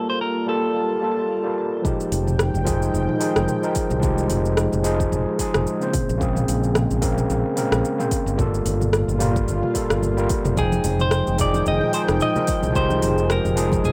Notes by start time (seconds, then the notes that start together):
Already playing: G3 A#3 F4 A4 A5
0.10 C5
0.21 A#4
0.47 G3 A#3 F4 A4
1.01 G3 A#3 F4 A4
1.43 G3 A#3 F4 A#4
1.82 D#3 F3 G#3 D#4 G5, kick, mid tom, shaker
1.87 G4
2.00 shaker
2.12 F1, open hi-hat, shaker
2.27 mid tom, shaker
2.39 cross-stick, shaker
2.54 F1, shaker
2.65 F3 G#3 D#4 G#4, kick, mid tom, open hi-hat, shaker
2.82 shaker
2.94 F1, shaker
3.09 mid tom
3.19 F3 G#3 D#4 G#4, open hi-hat, shaker
3.36 F1, cross-stick, shaker
3.48 mid tom, shaker
3.62 F3 G#3 D#4 A#4, shaker
3.75 kick, open hi-hat, shaker
3.90 C2, mid tom, shaker
4.00 F3 G#3 D#4, kick, shaker
4.05 G4
4.18 shaker
4.30 F1, mid tom, open hi-hat, shaker
4.45 shaker
4.57 cross-stick, shaker
4.72 F1, mid tom, shaker
4.84 F3 G#3 D#4 G#4, open hi-hat, shaker
5.00 kick, shaker
5.12 F1, mid tom, shaker
5.38 F3 G#3 D#4 G#4, kick, open hi-hat, shaker
5.54 F1, cross-stick, mid tom, shaker
5.67 shaker
5.80 C#3 A#3 C4 C5, shaker
5.93 kick, mid tom, open hi-hat, shaker
6.09 A#1, shaker
6.18 C#3 A#3 C4, kick, shaker
6.23 G#4
6.36 mid tom, shaker
6.48 A#1, open hi-hat, shaker
6.64 shaker
6.75 cross-stick, mid tom, shaker
6.91 A#1, shaker
7.01 C#3 A#3 C4 A#4, kick, open hi-hat, shaker
7.18 mid tom, shaker
7.30 A#1, shaker
7.56 C#3 A#3 C4 A#4, mid tom, open hi-hat, shaker
7.72 A#1, cross-stick, shaker
7.85 shaker
7.98 C#3 A#3 C4 C5, mid tom, shaker
8.11 kick, open hi-hat, shaker
8.26 G1, shaker
8.36 A#2 G3 A#3 F4, kick, mid tom, shaker
8.41 A4
8.54 shaker
8.65 G1, open hi-hat, shaker
8.81 mid tom, shaker
8.93 cross-stick, shaker
9.08 G1, shaker
9.19 G3 A#3 F4 A#4, mid tom, open hi-hat, shaker
9.36 kick, shaker
9.48 G1, shaker
9.63 mid tom
9.74 G3 A#3 F4 A4, kick, open hi-hat, shaker
9.90 G1, cross-stick, shaker
10.03 mid tom, shaker
10.17 G3 A#3 F4 A#4, shaker
10.29 kick, open hi-hat, shaker
10.45 F1, mid tom, shaker
10.54 D#3 F3 G#3 D#4 G5, kick, mid tom, shaker
10.59 G#4 G5
10.72 high conga, shaker
10.84 F1, open hi-hat, shaker
10.99 C5, mid tom, shaker
11.11 cross-stick, shaker
11.27 F1, high conga, shaker
11.38 F3 G#3 D#4 G#4 D5, kick, mid tom, open hi-hat, shaker
11.54 high conga, shaker
11.66 F1 D#5, shaker
11.81 mid tom, high bongo
11.93 F3 G#3 D#4 G#4 C5, open hi-hat, shaker
12.08 F1, cross-stick, shaker
12.20 D#5, mid tom, shaker
12.35 F3 G#3 D#4 A#4, low conga, shaker
12.47 kick, open hi-hat, shaker
12.63 C2, mid tom, shaker
12.72 F3 G#3 D#4, kick, shaker
12.76 G4 C5
12.90 high conga, shaker
13.02 F1, mid tom, open hi-hat, shaker
13.18 shaker
13.30 A#4, cross-stick, shaker
13.45 F1, mid tom, shaker
13.55 F3 G#3 D#4 G#4, open hi-hat, high bongo, shaker
13.72 kick, high conga, shaker
13.84 F1 G#4, mid tom, shaker